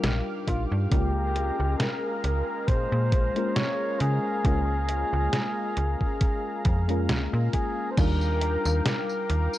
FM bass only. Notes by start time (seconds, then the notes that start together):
0.04 A#1
0.48 A#1
0.72 G2
0.92 C#2
1.60 C#2
2.24 C#2
2.68 A#2
2.92 A#2
3.12 A#1
4.01 C#3
4.45 C#2
5.13 C#2
5.77 C#2
6.65 F2
7.10 C#2
7.33 A#2
7.98 D#2
8.66 D#2
9.30 D#2